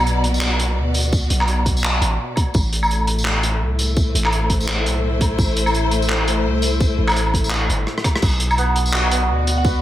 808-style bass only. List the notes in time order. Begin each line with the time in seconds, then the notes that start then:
Already playing: B1
0.77 D2
1.30 B1
2.01 A1
2.55 A1
3.61 C2
4.14 A1
4.85 B1
5.39 A1
6.45 C2
6.98 A1
7.69 G1
8.23 B1
9.29 D2